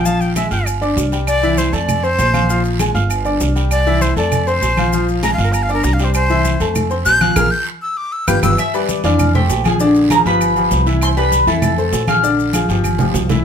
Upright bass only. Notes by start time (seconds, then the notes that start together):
Already playing: A#1
0.51 G1
0.97 C2
1.73 F2
2.19 A#1
2.94 G1
3.41 C2
4.16 F2
4.62 A#1
5.38 G1
5.84 C2
6.60 F2
7.06 A#1
7.36 A#1
8.28 G1
8.43 G1
9.04 F2
9.49 A#1
10.25 G1
10.71 C2
11.47 F2
11.93 A#1
12.69 G1
13.14 C2